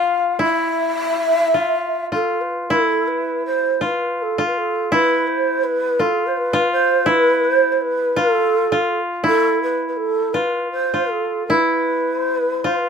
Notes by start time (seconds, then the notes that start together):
Already playing: F4 F5
0.39 E4 E5
1.54 F4
2.12 F4 A4
2.41 B4
2.70 E4 A4
3.07 B4
3.46 C5
3.81 F4 B4 C5
4.17 B4
4.22 A4
4.38 F4
4.46 B4
4.57 A4
4.92 E4 B4
5.27 C5
5.63 B4
5.99 F4 A4
6.27 C5
6.37 B4
6.53 F4
6.72 C5
7.06 E4 B4
7.44 C5
7.72 C5
7.81 B4
8.16 F4 A4
8.72 F4
9.24 E4 A4
9.63 B4
9.88 B4
9.96 A4
10.33 F4 B4
10.71 C5
10.94 F4
11.10 A4
11.47 E4 B4
12.20 C5
12.35 B4
12.59 C5
12.64 F4
12.74 B4